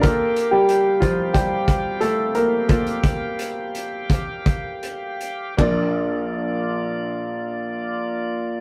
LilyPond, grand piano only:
\new Staff \with { instrumentName = "Grand piano" } { \time 4/4 \key g \minor \tempo 4 = 83 << { bes'8. <g g'>8. <f f'>8 <g g'>4 <a a'>8 <bes bes'>8~ | <bes bes'>2. r4 | <bes d' f' d''>1 | } \\ { <bes f' a'>4. r2 r8 | <bes f' a'>1 | bes,,1 | } >> }